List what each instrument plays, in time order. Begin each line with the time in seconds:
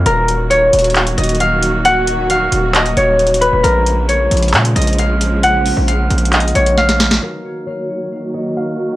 Already playing: harp C#5 D#5 F5
0.06 808-style bass D#1, string section D#3 F#3 A#3 F#4, harp A#4, closed hi-hat
0.28 closed hi-hat
0.50 harp C#5, closed hi-hat
0.73 808-style bass D#1, closed hi-hat
0.79 closed hi-hat
0.84 closed hi-hat
0.90 closed hi-hat
0.95 clap, closed hi-hat
1.07 closed hi-hat
1.17 808-style bass D#1, harp D#5, closed hi-hat
1.23 closed hi-hat
1.29 closed hi-hat
1.35 closed hi-hat
1.40 harp F5, closed hi-hat
1.63 closed hi-hat
1.85 harp F#5, closed hi-hat
2.07 closed hi-hat
2.30 harp F5, closed hi-hat
2.52 808-style bass D#1, closed hi-hat
2.74 harp D#5, clap, closed hi-hat
2.86 closed hi-hat
2.97 808-style bass D#1, harp C#5, closed hi-hat
3.19 closed hi-hat
3.27 closed hi-hat
3.34 closed hi-hat
3.41 harp B4, closed hi-hat
3.53 808-style bass D#1
3.63 808-style bass A#1, string section C#3 F3 G#3, harp A#4, closed hi-hat
3.86 closed hi-hat
4.08 harp C#5, closed hi-hat
4.31 808-style bass A#1, closed hi-hat
4.37 closed hi-hat
4.42 closed hi-hat
4.48 closed hi-hat
4.54 808-style bass A#2, clap, closed hi-hat
4.65 closed hi-hat
4.76 808-style bass A#1, harp D#5, closed hi-hat
4.82 closed hi-hat
4.87 closed hi-hat
4.93 closed hi-hat
4.98 harp F5, closed hi-hat
5.21 closed hi-hat
5.43 harp F#5, closed hi-hat
5.66 open hi-hat
5.77 808-style bass A#1
5.88 harp F5, closed hi-hat
6.10 808-style bass A#1, closed hi-hat
6.18 closed hi-hat
6.25 closed hi-hat
6.33 harp D#5, clap, closed hi-hat
6.40 closed hi-hat
6.48 closed hi-hat
6.55 808-style bass A#1, harp C#5, closed hi-hat
6.66 closed hi-hat
6.78 harp F5, snare, closed hi-hat
6.89 snare, closed hi-hat
7.00 snare, closed hi-hat
7.11 snare
7.22 string section D#3 F#3 A#3 F#4, harp A#4
7.66 harp C#5
8.34 harp D#5
8.57 harp F5